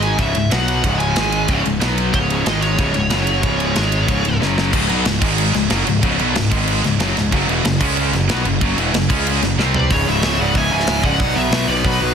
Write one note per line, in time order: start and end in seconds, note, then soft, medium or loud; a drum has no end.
0.00 0.17 G#1 medium
0.00 0.17 G#2 medium
0.00 0.18 D#3 medium
0.00 0.19 G#3 loud
0.00 0.19 G#5 loud
0.00 ride medium
0.18 0.34 C#1 loud
0.18 0.34 C#2 medium
0.18 0.33 G#2 loud
0.18 0.35 C#3 loud
0.18 0.49 E5 medium
0.18 kick loud
0.18 ride loud
0.35 0.50 C#1 medium
0.35 0.48 C#2 medium
0.35 0.48 G#2 medium
0.35 ride medium
0.50 0.82 B1 medium
0.50 0.82 B2 medium
0.50 0.83 F#3 loud
0.50 0.83 B3 medium
0.50 0.67 F#5 loud
0.50 snare loud
0.50 ride medium
0.68 0.81 F#5 medium
0.68 ride medium
0.83 1.14 C#1 medium
0.83 1.15 C#2 loud
0.83 1.14 G#2 loud
0.83 1.16 C#3 loud
0.83 0.99 F#5 medium
0.83 kick loud
0.83 ride loud
0.99 1.61 G#5 medium
0.99 ride medium
1.15 1.47 G#1 medium
1.15 1.48 G#2 loud
1.15 1.48 D#3 medium
1.15 1.48 G#3 loud
1.15 snare loud
1.15 ride loud
1.32 ride medium
1.48 1.64 C#1 loud
1.48 1.63 C#2 medium
1.48 1.63 G#2 loud
1.48 1.65 C#3 loud
1.48 kick loud
1.48 ride loud
1.64 1.80 C#1 medium
1.64 1.78 C#2 medium
1.64 1.78 G#2 medium
1.64 ride medium
1.80 2.12 B1 medium
1.80 2.12 B2 loud
1.80 2.13 F#3 medium
1.80 2.13 B3 loud
1.80 snare loud
1.80 ride medium
1.98 ride medium
2.13 2.44 C#1 medium
2.13 2.45 C#2 medium
2.13 2.45 G#2 loud
2.13 2.46 C#3 loud
2.13 2.46 C#5 medium
2.13 kick loud
2.13 ride loud
2.30 ride medium
2.46 2.76 G#1 loud
2.46 2.77 G#2 loud
2.46 2.78 D#3 medium
2.46 2.78 G#3 loud
2.46 2.62 D#5 loud
2.46 snare loud
2.46 ride medium
2.62 4.37 C#5 medium
2.62 ride medium
2.78 2.94 C#1 loud
2.78 2.92 C#2 medium
2.78 2.93 G#2 loud
2.78 2.94 C#3 loud
2.78 kick loud
2.78 ride loud
2.93 3.11 C#1 medium
2.93 3.10 C#2 medium
2.93 3.10 G#2 medium
2.93 ride medium
3.10 3.42 F#1 loud
3.10 3.42 F#2 medium
3.10 3.42 C#3 loud
3.10 3.43 F#3 loud
3.10 snare loud
3.10 ride medium
3.27 ride medium
3.43 3.74 C#1 medium
3.43 3.74 C#2 medium
3.43 3.73 G#2 medium
3.43 3.75 C#3 loud
3.43 kick loud
3.43 ride loud
3.60 ride medium
3.75 4.07 G#1 medium
3.75 4.07 G#2 medium
3.75 4.07 D#3 medium
3.75 4.08 G#3 loud
3.75 snare loud
3.75 ride loud
3.92 ride medium
4.07 4.24 C#1 loud
4.07 4.23 C#2 loud
4.07 4.24 G#2 loud
4.07 4.24 C#3 loud
4.07 kick loud
4.07 ride loud
4.24 4.40 C#1 medium
4.24 4.38 C#2 medium
4.24 4.38 G#2 medium
4.24 ride medium
4.40 4.71 F#1 medium
4.40 4.72 F#2 medium
4.40 4.72 C#3 loud
4.40 4.73 F#3 loud
4.40 snare medium
4.58 snare loud
4.72 4.88 C#1 loud
4.72 4.88 C#2 medium
4.72 4.88 G#2 medium
4.72 4.89 C#3 loud
4.72 kick loud
4.72 crash loud
4.72 crash medium
4.88 5.05 B1 medium
4.88 5.05 B2 medium
4.88 5.05 F#3 loud
4.88 5.05 B3 loud
4.88 crash medium
5.05 5.21 C#1 medium
5.05 5.19 C#2 medium
5.05 5.19 G#2 medium
5.05 snare loud
5.05 crash medium
5.21 5.52 G#1 loud
5.21 5.53 G#2 loud
5.21 5.54 D#3 loud
5.21 5.54 G#3 loud
5.21 kick loud
5.21 crash loud
5.38 crash medium
5.54 5.69 C#1 medium
5.54 5.67 C#2 medium
5.54 5.67 G#2 medium
5.54 snare soft
5.54 crash medium
5.70 5.86 F#1 loud
5.70 5.86 F#2 medium
5.70 5.87 C#3 loud
5.70 5.87 F#3 loud
5.70 snare loud
5.70 crash medium
5.86 6.02 C#1 medium
5.86 5.99 C#2 medium
5.86 6.00 G#2 medium
5.86 crash medium
6.02 6.18 C#1 loud
6.02 6.18 C#2 medium
6.02 6.18 G#2 loud
6.02 6.19 C#3 loud
6.02 kick loud
6.02 crash medium
6.19 6.34 B1 medium
6.19 6.35 B2 loud
6.19 6.35 F#3 loud
6.19 6.35 B3 loud
6.19 crash medium
6.35 6.50 C#1 medium
6.35 6.48 C#2 medium
6.35 6.48 G#2 medium
6.35 snare loud
6.35 crash medium
6.51 6.82 G#1 loud
6.51 6.83 G#2 loud
6.51 6.83 D#3 loud
6.51 6.83 G#3 loud
6.51 kick loud
6.51 crash loud
6.68 crash loud
6.84 6.99 C#1 medium
6.84 6.97 C#2 medium
6.84 6.97 G#2 medium
6.84 snare soft
6.84 crash medium
6.99 7.15 F#1 loud
6.99 7.16 F#2 loud
6.99 7.16 C#3 loud
6.99 7.17 F#3 loud
6.99 snare loud
6.99 crash medium
7.16 7.31 C#1 medium
7.16 7.30 C#2 medium
7.16 7.30 G#2 medium
7.16 snare soft
7.16 crash medium
7.32 7.47 F#1 loud
7.32 7.48 F#2 medium
7.32 7.48 C#3 loud
7.32 7.49 F#3 loud
7.32 kick loud
7.32 crash medium
7.48 7.63 E1 loud
7.48 7.64 E2 loud
7.48 7.65 B2 loud
7.48 7.65 E3 loud
7.48 crash medium
7.64 7.79 F#1 medium
7.64 7.78 F#2 medium
7.64 7.78 C#3 medium
7.64 snare loud
7.64 crash medium
7.80 8.11 C#2 loud
7.80 8.12 C#3 loud
7.80 8.13 G#3 loud
7.80 8.13 C#4 loud
7.80 kick loud
7.80 crash loud
7.97 crash medium
8.13 8.28 F#1 medium
8.13 8.26 F#2 medium
8.13 8.26 C#3 medium
8.13 snare soft
8.13 crash medium
8.29 8.44 B1 loud
8.29 8.45 B2 loud
8.29 8.45 F#3 loud
8.29 8.45 B3 loud
8.29 snare loud
8.29 crash medium
8.44 8.60 F#1 medium
8.44 8.59 F#2 medium
8.44 8.59 C#3 medium
8.44 crash medium
8.61 8.75 F#1 loud
8.61 8.77 F#2 loud
8.61 8.78 C#3 loud
8.61 8.77 F#3 loud
8.61 kick loud
8.61 crash medium
8.76 8.92 E1 loud
8.76 8.93 E2 loud
8.76 8.94 B2 loud
8.76 8.94 E3 loud
8.76 crash medium
8.93 9.08 F#1 medium
8.93 9.06 F#2 medium
8.93 9.07 C#3 medium
8.93 snare loud
8.93 crash medium
9.09 9.40 C#2 loud
9.09 9.41 C#3 loud
9.09 9.41 G#3 loud
9.09 9.42 C#4 loud
9.09 kick loud
9.09 crash loud
9.27 crash loud
9.42 9.58 F#1 medium
9.42 9.55 F#2 medium
9.42 9.55 C#3 medium
9.42 snare soft
9.42 crash medium
9.58 9.88 C2 loud
9.58 9.90 C3 loud
9.58 9.91 G3 loud
9.58 9.91 C4 loud
9.58 snare medium
9.74 9.91 B4 medium
9.74 9.91 D5 medium
9.74 floor tom loud
9.90 10.05 C#1 medium
9.90 10.07 C#2 medium
9.90 10.06 G#2 loud
9.90 10.06 C#3 loud
9.90 10.06 G#4 medium
9.90 10.09 C#5 medium
9.90 kick loud
9.90 open hi-hat medium
10.07 10.21 C#1 medium
10.07 10.22 C#2 medium
10.07 10.23 G#2 medium
10.07 10.23 C#3 loud
10.07 10.40 C#5 medium
10.07 10.40 E5 loud
10.22 10.37 C#1 medium
10.22 10.39 C#2 medium
10.22 10.39 G#2 loud
10.22 10.38 C#3 loud
10.22 snare loud
10.22 open hi-hat medium
10.39 10.54 C#1 loud
10.39 10.55 C#2 medium
10.39 10.55 G#2 medium
10.39 10.55 C#3 loud
10.39 10.56 D5 medium
10.39 10.57 F#5 medium
10.55 10.70 C#1 loud
10.55 10.71 C#2 loud
10.55 10.70 G#2 loud
10.55 10.70 C#3 loud
10.55 10.71 E5 medium
10.55 10.72 G#5 loud
10.55 kick loud
10.55 open hi-hat medium
10.71 10.86 C#1 medium
10.71 10.87 C#2 medium
10.71 10.88 G#2 medium
10.71 10.88 C#3 loud
10.71 11.02 E5 medium
10.71 11.04 G#5 medium
10.80 snare soft
10.87 11.02 C#1 medium
10.87 11.05 C#2 medium
10.87 11.04 G#2 medium
10.87 11.04 C#3 medium
10.87 snare loud
10.87 open hi-hat medium
11.04 11.18 C#1 medium
11.04 11.20 C#2 medium
11.04 11.20 G#2 medium
11.04 11.19 C#3 loud
11.04 11.34 D5 medium
11.04 11.37 F#5 loud
11.04 kick loud
11.20 11.34 B1 loud
11.20 11.37 B2 loud
11.20 11.36 F#3 loud
11.20 11.37 B3 loud
11.20 kick loud
11.20 open hi-hat medium
11.36 11.50 B1 medium
11.36 11.53 B2 medium
11.36 11.53 F#3 medium
11.36 11.55 B3 loud
11.36 11.66 B4 medium
11.36 11.68 E5 medium
11.51 11.66 B1 loud
11.51 11.69 B2 medium
11.51 11.68 F#3 medium
11.51 11.69 B3 medium
11.51 snare loud
11.51 open hi-hat medium
11.68 11.82 B1 loud
11.68 11.85 B2 medium
11.68 11.86 F#3 medium
11.68 11.86 B3 loud
11.68 11.85 B4 medium
11.68 11.85 D5 medium
11.84 11.99 B1 loud
11.84 12.02 B2 loud
11.84 12.02 F#3 loud
11.84 12.01 B3 loud
11.84 12.14 F#4 medium
11.84 12.14 B4 medium
11.84 kick loud
11.84 open hi-hat medium
12.01 12.14 B1 loud
12.01 12.14 B2 medium
12.01 12.14 F#3 loud
12.01 12.14 B3 loud